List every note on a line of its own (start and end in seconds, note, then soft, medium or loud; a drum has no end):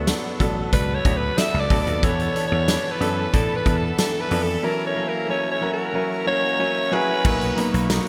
0.00 0.11 D2 medium
0.00 0.07 F#3 medium
0.00 2.03 F#3 medium
0.00 0.07 B3 medium
0.00 1.05 B3 medium
0.00 0.08 D4 medium
0.00 0.08 A4 medium
0.00 4.60 A4 medium
0.00 1.99 F#5 medium
0.00 4.60 A5 medium
0.00 4.60 B5 medium
0.07 0.30 F#3 medium
0.07 0.31 B3 medium
0.07 0.72 D4 medium
0.07 0.31 D4 medium
0.07 0.31 A4 loud
0.07 snare loud
0.07 closed hi-hat medium
0.07 tambourine medium
0.40 0.65 A1 medium
0.40 0.63 F#3 loud
0.40 0.63 B3 loud
0.40 0.64 D4 loud
0.40 1.70 A4 medium
0.40 0.64 A4 loud
0.40 kick medium
0.40 closed hi-hat medium
0.72 0.97 C#2 medium
0.72 0.96 F#3 medium
0.72 0.96 B3 medium
0.72 1.37 D4 medium
0.72 0.96 D4 medium
0.72 0.96 A4 medium
0.72 0.96 B4 loud
0.72 kick medium
0.72 closed hi-hat loud
0.94 1.18 C#5 loud
1.05 1.30 D2 medium
1.05 1.28 F#3 medium
1.05 2.03 B3 medium
1.05 1.29 B3 medium
1.05 1.29 D4 medium
1.05 1.29 A4 medium
1.05 kick medium
1.05 closed hi-hat medium
1.16 1.40 B4 loud
1.37 1.61 F#3 medium
1.37 1.61 B3 medium
1.37 2.68 D4 medium
1.37 1.61 D4 medium
1.37 1.62 A4 medium
1.37 1.62 E5 loud
1.37 snare loud
1.37 closed hi-hat medium
1.37 tambourine medium
1.54 1.66 C#2 medium
1.60 1.81 D5 loud
1.70 1.83 D2 medium
1.70 1.94 F#3 medium
1.70 1.94 B3 medium
1.70 1.94 D4 medium
1.70 2.39 A4 medium
1.70 1.94 A4 loud
1.70 kick loud
1.70 open hi-hat medium
1.82 2.05 D5 loud
1.87 1.99 D#2 medium
1.87 closed hi-hat soft
2.03 2.28 E2 loud
2.03 2.26 E3 loud
2.03 2.26 B3 medium
2.03 2.35 B3 medium
2.03 2.27 D4 medium
2.03 2.27 A4 loud
2.03 2.47 C#5 loud
2.03 7.21 E5 medium
2.03 kick loud
2.03 closed hi-hat medium
2.19 closed hi-hat medium
2.35 2.59 E3 medium
2.35 2.59 B3 medium
2.35 3.65 B3 medium
2.35 2.59 D4 medium
2.35 2.59 A4 medium
2.35 closed hi-hat medium
2.47 2.92 C#5 loud
2.52 2.76 E2 loud
2.67 2.91 E3 medium
2.67 2.91 B3 medium
2.67 2.92 D4 medium
2.67 3.33 D4 medium
2.67 2.92 A4 medium
2.67 snare loud
2.67 closed hi-hat medium
2.67 tambourine medium
2.91 3.35 B4 medium
3.00 3.25 F#2 medium
3.00 3.24 E3 medium
3.00 3.24 B3 medium
3.00 3.24 D4 medium
3.00 4.30 A4 medium
3.00 3.25 A4 loud
3.00 closed hi-hat medium
3.33 3.58 A2 medium
3.33 3.56 E3 medium
3.33 3.57 B3 medium
3.33 3.57 D4 medium
3.33 3.98 D4 medium
3.33 3.57 A4 medium
3.33 kick medium
3.33 closed hi-hat medium
3.56 3.79 B4 medium
3.65 3.90 E2 loud
3.65 3.89 E3 medium
3.65 3.89 B3 medium
3.65 4.71 B3 medium
3.65 3.89 D4 medium
3.65 3.90 A4 medium
3.65 kick medium
3.65 closed hi-hat medium
3.78 3.99 A4 medium
3.98 4.22 E3 medium
3.98 4.22 B3 medium
3.98 4.22 D4 medium
3.98 4.70 D4 medium
3.98 4.22 A4 medium
3.98 4.23 A4 medium
3.98 snare loud
3.98 closed hi-hat medium
3.98 tambourine medium
4.21 4.45 B4 medium
4.30 4.56 F2 medium
4.30 4.54 E3 medium
4.30 4.54 B3 medium
4.30 4.55 D4 medium
4.30 4.71 A4 medium
4.30 4.55 A4 loud
4.30 open hi-hat medium
4.43 4.66 A4 medium
4.63 7.25 E3 medium
4.63 4.87 F#3 medium
4.63 4.87 C#4 medium
4.63 4.87 E4 medium
4.63 4.87 A#4 loud
4.63 4.86 A#4 medium
4.63 7.22 F#5 medium
4.63 7.22 A#5 medium
4.63 7.22 C#6 medium
4.87 5.10 C#5 medium
4.96 5.20 F#3 medium
4.96 6.27 A#3 medium
4.96 5.20 C#4 medium
4.96 5.20 E4 medium
4.96 5.20 A#4 medium
5.08 5.29 A#4 medium
5.29 5.52 F#3 medium
5.29 5.52 C#4 medium
5.29 5.94 C#4 medium
5.29 5.53 E4 medium
5.29 5.53 A#4 medium
5.29 5.50 C#5 loud
5.51 5.71 C#5 medium
5.61 5.85 F#3 medium
5.61 5.85 C#4 medium
5.61 5.85 E4 medium
5.61 6.92 F#4 medium
5.61 5.85 A#4 loud
5.73 6.23 A#4 medium
5.94 6.17 F#3 medium
5.94 6.18 C#4 medium
5.94 6.59 C#4 medium
5.94 6.18 E4 medium
5.94 6.18 A#4 medium
6.26 6.50 F#3 medium
6.26 7.58 A#3 medium
6.26 6.50 C#4 medium
6.26 6.50 E4 medium
6.26 6.51 A#4 medium
6.26 6.94 C#5 loud
6.59 6.83 F#3 medium
6.59 6.83 C#4 medium
6.59 7.32 C#4 medium
6.59 6.83 E4 medium
6.59 6.83 A#4 medium
6.92 7.15 F#3 loud
6.92 7.15 C#4 loud
6.92 7.16 E4 loud
6.92 8.08 F#4 medium
6.92 7.16 G#4 loud
6.92 7.90 B4 loud
7.24 7.49 B1 loud
7.24 7.48 F#3 loud
7.24 8.08 F#3 medium
7.24 7.48 A#3 medium
7.24 7.48 B3 medium
7.24 7.48 D#4 medium
7.24 7.48 A#4 loud
7.24 8.08 D#5 medium
7.24 8.08 F#5 medium
7.24 8.08 A#5 medium
7.24 8.08 D#6 medium
7.24 kick loud
7.24 crash loud
7.41 closed hi-hat medium
7.57 7.80 F#3 loud
7.57 7.80 A#3 medium
7.57 8.08 A#3 medium
7.57 7.81 B3 medium
7.57 7.81 D#4 medium
7.57 7.81 A#4 loud
7.57 closed hi-hat medium
7.74 7.98 B1 loud
7.74 closed hi-hat medium
7.89 8.08 F#3 medium
7.89 8.08 A#3 medium
7.89 8.08 B3 medium
7.89 8.08 D#4 medium
7.89 8.08 A#4 medium
7.89 snare loud
7.89 tambourine medium